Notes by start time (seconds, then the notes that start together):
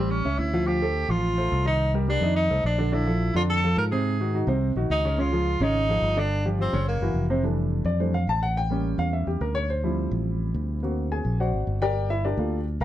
Already playing: A1 G3 C4 G4 G5
0.10 C#4
0.25 C#2 C#4 C#5 E5
0.39 D2 E4
0.53 F3 F4 F5
0.67 F3 F4 G4 F5
0.82 A3 A4 C5
1.09 A1 F3 F4 F5
1.38 A3 A4 C5
1.52 C2
1.65 D#3 D#4 D#5
1.94 G3 G4 A#4
2.08 G3 D4 G4 A#4
2.21 F2 D#3 D#4 D#5
2.36 D#4
2.50 C2 A3 A4 C5
2.64 A#1 D4
2.78 D3 D4 D5
2.92 D3 D4 E4 D5
3.07 F3 F4 A4
3.35 F2 D3 D4 F4 D5
3.50 A4
3.64 F3 F4 A4
3.77 G#2 A#4
3.92 C3 C4 G#4 C5
4.20 D#3 D#4 F#4
4.34 D#3 D#4 F#4
4.47 C2 C3 C4 C5
4.76 A#1 D#3 D#4 F#4
4.90 C#2 D#4
5.05 C#3 C#4 C#5
5.18 C#3 C#4 F4 C#5
5.32 F3 F4 G#4
5.60 G#1 C#3 C#4 D#4 C#5
5.89 F3 F4 G#4
6.02 G1
6.17 D3 D4 D5
6.45 F3 F4 G4
6.59 F3 C4 F4 G4
6.73 F#1 C#3 C#4 C#5
6.88 A#3
7.01 F#1 E3 E4 F#4
7.14 F1
7.30 C3 C4 C5
7.43 E3 G3 A3 D4
7.85 F2 D5
8.00 E3 G3 A3 D4 C5
8.14 F5
8.27 A1 A5
8.43 F#5
8.57 G5
8.70 G3 A#3 C#4
8.98 E2 F5
9.13 E5
9.27 E2 G4
9.41 D2 A#4
9.55 C#5
9.70 C5
9.83 F3 G3 C4 E4
10.11 A1
10.54 D2
10.83 A#3 C4 F#4
11.12 G#4 G#5
11.25 A#1
11.40 F#4 C5 D5 F#5
11.54 G#1
11.67 G1
11.82 G4 A#4 D5 G5
12.10 E4 E5
12.25 D4 G4 A#4 D5
12.37 D2 A3 A#3 F4
12.80 C2 A#4 G5 A#5